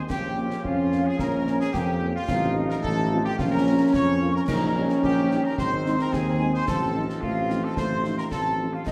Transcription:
0.09 A#1 F3 A#3 C#4 G4 G5, concert bass drum, snare, crash
0.37 A#3 C#4
0.50 snare
0.64 F2 C#4 F4 F5, concert bass drum
0.92 A#3 C#4, snare
1.05 G#4 G#5
1.19 A#1 C#4 A#4 A#5, concert bass drum, snare
1.47 A#3 C#4, snare
1.60 G#4 G#5, snare
1.72 F2 A#3 G4 G5, concert bass drum, snare
2.01 A#3 C#4
2.15 F4 F5
2.28 A1 F3 C4 D#4, concert bass drum, snare, crash
2.56 A3 C4 D#4 F4
2.69 A#4 A#5, snare
2.82 A1 A4 A5, concert bass drum
3.11 C4 D#4 F4
3.24 G4 G5
3.37 A#1 C#4 F4 F5, concert bass drum, snare
3.51 A#4 A#5
3.67 A#3 C#4 F4
3.93 F2 C#5 C#6, concert bass drum, snare
4.21 A#3 C#4 F4
4.34 A#4 A#5
4.48 A#1 D#3 D#4 A#4 A#5, concert bass drum, snare, crash
4.75 G3 C#4 D#4
4.89 snare
5.03 A#1 G4 G5, concert bass drum
5.31 G3 C#4 D#4, snare
5.44 A#4 A#5
5.58 G#1 C4 C5 C6, concert bass drum, snare
5.86 G#3 C4 D#4, snare
5.99 A#4 A#5, snare
6.12 D#2 G#4 G#5, concert bass drum, snare
6.41 G#3 C4 D#4
6.54 C5 C6
6.66 A1 F3 C4 A4 A5, concert bass drum, snare, crash
6.95 F3 C4 D#4
7.10 snare
7.21 A1 A3 F4 F5, concert bass drum
7.50 F3 C4 D#4, snare
7.63 A4 A5
7.76 A1 A3 C5 C6, concert bass drum, snare
8.04 F3 C4 D#4, snare
8.17 A#4 A#5, snare
8.31 A1 C4 A4 A5, concert bass drum, snare
8.58 F3 C4 D#4
8.73 F4 F5
8.85 A#1 F3 A#3 D#4 D#5, concert bass drum, snare, crash

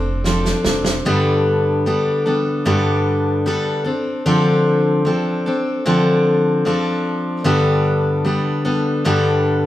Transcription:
Already playing: F1 C4 D4 A4
0.24 F3 C4 D4 A4, snare
0.45 snare
0.65 F1 C4 D4 A4, snare
0.85 snare
1.05 G2 D3 G3 B3 D4 A4
1.86 G3 B3 D4 A4
2.26 G3 B3 D4 A4
2.65 G2 D3 G3 B3 D4 A4
3.46 G3 B3 D4 A4
3.84 C4 D4 A4
4.26 D3 F3 C4 D4 A4
5.05 F3 C4 D4 A4
5.46 C4 D4 A4
5.86 D3 F3 C4 D4 A4
6.65 F3 C4 D4 A4
7.44 G2 D3 G3 B3 D4 A4
8.25 G3 B3 D4 A4
8.65 G3 B3 D4 A4
9.05 G2 D3 G3 B3 D4 A4

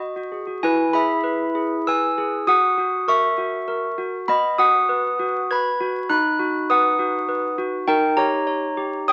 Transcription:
Already playing: B3
0.00 D#5
0.16 F#4
0.32 G#4
0.47 F#4
0.63 E4 B4 G#5
0.93 G#4 E5 B5
1.24 B4
1.55 G#4
1.87 B4 G#5 E6
2.18 G#4
2.47 F#4 F#5 D#6
2.78 F#4
3.08 A#4 E5 C#6
3.38 F#4
3.68 A#4
3.98 F#4
4.28 B3 D#5 B5
4.58 F#4 F#5 D#6
4.89 B4
5.19 F#4
5.51 B4 B5 G#6
5.81 F#4
6.09 D#4 B5 F#6
6.39 F#4
6.70 B4 F#5 D#6
6.99 F#4
7.29 B4
7.58 F#4
7.87 D#4 A#4 G5
8.17 G4 C#5 A#5
8.47 C#5
8.77 G4
9.08 C#5 G5 D#6

